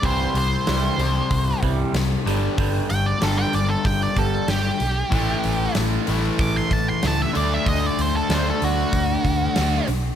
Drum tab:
HH |oooooooo|oooooooo|oooooooo|oooooooo|
SD |--o---o-|--o---o-|--o---o-|--o---o-|
BD |o---oo--|o---oo--|o---oo--|o---oo--|